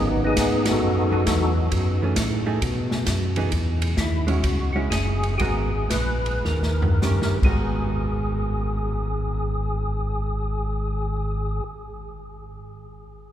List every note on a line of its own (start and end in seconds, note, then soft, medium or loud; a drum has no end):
0.00 0.36 G#1 medium
0.00 0.34 F#3 medium
0.00 0.23 B3 medium
0.00 0.34 B3 medium
0.00 0.23 D#4 medium
0.00 0.34 D#4 medium
0.24 1.09 B3 medium
0.24 0.67 D#4 medium
0.24 0.66 G#4 loud
0.37 0.81 G#2 medium
0.37 kick soft
0.37 snare medium
0.37 hi-hat pedal medium
0.37 ride medium
0.65 1.53 D#4 medium
0.65 1.54 F#4 medium
0.65 snare medium
0.65 ride medium
0.71 1.55 A4 medium
0.82 1.26 F#2 medium
1.11 1.69 F#3 medium
1.11 1.69 B3 medium
1.11 1.69 D#4 medium
1.27 1.70 E2 medium
1.27 kick soft
1.27 snare medium
1.27 hi-hat pedal medium
1.27 ride medium
1.72 2.15 F#2 medium
1.72 kick soft
1.72 ride medium
2.02 2.16 E3 medium
2.02 2.16 A3 medium
2.02 2.17 C#4 medium
2.16 2.61 A2 medium
2.16 kick soft
2.16 snare medium
2.16 hi-hat pedal medium
2.16 ride medium
2.46 2.60 A3 medium
2.46 2.60 D#4 medium
2.46 2.61 G#4 medium
2.62 3.05 B2 medium
2.62 kick soft
2.62 ride medium
2.91 snare medium
3.06 3.50 F#2 medium
3.06 kick soft
3.06 snare medium
3.06 hi-hat pedal medium
3.06 ride medium
3.36 3.50 E3 medium
3.36 3.51 B3 medium
3.36 3.51 D#4 medium
3.36 3.51 G#4 medium
3.36 ride soft
3.52 3.96 E2 medium
3.52 kick soft
3.52 ride medium
3.82 ride medium
3.97 4.42 D#2 medium
3.97 4.29 E4 medium
3.97 kick soft
3.97 snare medium
3.97 hi-hat pedal medium
4.27 4.41 G#3 medium
4.27 4.42 C#4 medium
4.27 4.42 E4 medium
4.27 4.71 F#4 medium
4.27 ride soft
4.43 4.89 C#2 medium
4.43 kick soft
4.43 ride medium
4.73 4.89 G#3 medium
4.73 4.89 C#4 medium
4.73 4.90 E4 medium
4.73 4.80 F#4 medium
4.90 5.38 F#1 medium
4.90 5.35 G#4 medium
4.90 kick soft
4.90 snare medium
4.90 hi-hat pedal soft
4.90 ride medium
5.23 ride soft
5.38 5.89 G#1 medium
5.38 5.70 G#3 medium
5.38 5.70 B3 medium
5.38 5.70 F#4 medium
5.38 5.41 G4 medium
5.38 5.91 G#4 medium
5.38 5.70 A#4 medium
5.38 kick soft
5.38 ride medium
5.90 6.42 A#1 medium
5.90 6.45 B4 medium
5.90 kick soft
5.90 snare medium
5.90 hi-hat pedal medium
5.90 ride medium
6.26 ride soft
6.45 7.00 D#2 medium
6.45 7.38 A#4 medium
6.45 snare soft
6.63 snare soft
6.82 floor tom medium
7.02 7.40 G2 medium
7.02 7.37 D#3 medium
7.02 7.38 C#4 medium
7.02 7.38 G4 medium
7.02 7.38 A#4 medium
7.02 snare medium
7.02 hi-hat pedal soft
7.22 snare medium
7.42 11.61 G#1 medium
7.42 11.66 G#3 medium
7.42 11.68 B3 medium
7.42 11.69 F#4 medium
7.42 11.64 G#4 medium
7.42 kick soft
7.42 crash soft
7.46 11.69 A#4 medium